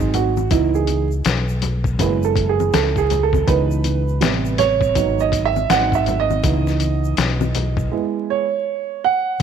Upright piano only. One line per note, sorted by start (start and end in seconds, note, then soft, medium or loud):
0.00 0.30 F#3 medium
0.00 0.30 C4 soft
0.00 0.30 D#4 medium
0.00 0.18 G#4 medium
0.14 0.52 F#4 medium
0.51 1.04 E3 medium
0.51 1.04 B3 soft
0.51 1.05 D#4 medium
0.51 0.75 E4 medium
0.75 1.09 G#4 medium
2.00 3.44 G#3 medium
2.00 3.44 B3 soft
2.00 3.44 E4 medium
2.00 2.25 B4 medium
2.25 2.47 A4 medium
2.49 2.72 G#4 medium
2.74 2.99 A4 medium
2.98 3.23 G#4 medium
3.23 3.48 A4 medium
3.47 4.00 E3 medium
3.47 4.01 B3 soft
3.47 4.01 D#4 medium
3.47 4.62 B4 medium
4.21 4.92 C3 medium
4.21 4.91 G3 medium
4.21 4.92 B3 soft
4.59 5.22 C#5 loud
4.95 5.48 F#3 medium
4.95 5.49 B3 soft
4.95 5.49 D#4 medium
5.20 5.43 D#5 medium
5.45 5.71 E5 loud
5.69 6.40 F#3 medium
5.69 6.40 C4 medium
5.69 6.41 D#4 medium
5.69 5.95 F#5 loud
5.95 6.20 E5 loud
6.20 8.01 D#5 loud
6.43 7.88 E3 medium
6.43 7.88 B3 medium
6.43 7.88 D#4 medium
7.91 8.45 G#3 medium
7.91 8.45 B3 soft
7.91 8.45 E4 medium
8.30 9.00 C#5 medium
9.04 9.38 F#5 medium